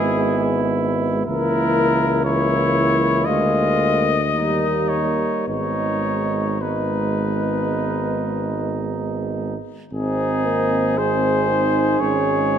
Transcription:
0.00 1.22 G#1 medium
0.00 1.25 G#3 medium
0.00 1.23 B3 medium
0.00 1.22 E4 medium
0.00 0.78 G#4 medium
1.26 3.28 C#2 medium
1.26 2.21 E3 medium
1.26 2.22 A#3 medium
1.26 2.21 E4 medium
1.26 2.21 A#4 medium
2.25 3.29 E3 medium
2.25 3.25 A#3 medium
2.25 3.29 E4 soft
2.25 3.27 C#5 medium
3.25 4.35 D2 soft
3.25 4.17 G#3 soft
3.25 4.16 A#3 medium
3.25 4.17 F4 soft
3.25 4.90 D#5 medium
4.33 5.31 D#2 soft
4.33 5.49 G3 soft
4.33 5.48 A#3 soft
4.33 5.46 D#4 soft
4.89 5.47 C#5 medium
5.47 9.56 G#1 soft
5.47 6.61 G#3 soft
5.47 6.61 B3 soft
5.47 6.59 D#4 soft
5.47 6.63 C#5 medium
6.61 9.56 G#3 soft
6.61 9.55 B3 soft
6.61 9.55 D#4 soft
6.61 8.83 B4 soft
9.91 11.96 G#1 soft
9.91 10.47 C4 soft
9.91 12.03 C4 soft
9.91 10.99 D#4 soft
9.91 11.00 G#4 medium
10.45 11.00 A#3 soft
10.97 11.50 G#3 soft
10.97 12.59 G#4 soft
10.97 12.01 C5 medium
11.49 12.02 D#4 soft
12.00 12.59 G#1 soft
12.00 12.59 G#3 soft
12.00 12.59 C#4 soft
12.00 12.59 C#5 medium

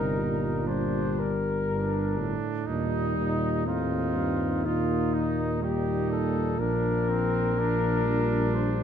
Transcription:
0.00 2.35 G1 soft
0.00 0.20 C3 soft
0.00 0.67 G3 soft
0.00 0.68 D#4 soft
0.00 0.69 A#4 medium
0.18 1.39 A#2 soft
0.67 2.35 G3 soft
0.67 1.39 D4 soft
0.67 1.20 C5 soft
1.19 2.39 A#4 soft
1.68 2.19 G2 soft
1.68 2.68 D4 soft
2.17 2.69 A2 soft
2.67 6.55 D#2 soft
2.67 3.17 A#2 soft
2.67 3.67 G3 soft
2.67 3.66 D#4 soft
2.67 3.69 D#4 soft
3.18 3.69 A#2 soft
3.66 4.17 A2 soft
3.66 4.66 C4 soft
3.66 4.66 D#4 soft
3.66 4.66 F4 soft
4.15 4.67 G2 soft
4.64 8.83 A#2 soft
4.64 5.63 A#3 soft
4.64 5.65 D#4 soft
4.64 5.15 F4 soft
5.14 5.62 D#4 soft
5.61 6.59 G3 soft
5.61 6.58 D#4 soft
5.61 6.11 G4 soft
6.11 6.61 A4 soft
6.59 8.83 A#1 soft
6.59 7.55 F3 soft
6.59 7.11 D4 soft
6.59 8.56 A#4 medium
7.09 7.60 C4 soft
7.57 8.04 F3 soft
7.57 8.83 D4 soft
8.05 8.83 G3 soft
8.54 8.83 C5 soft

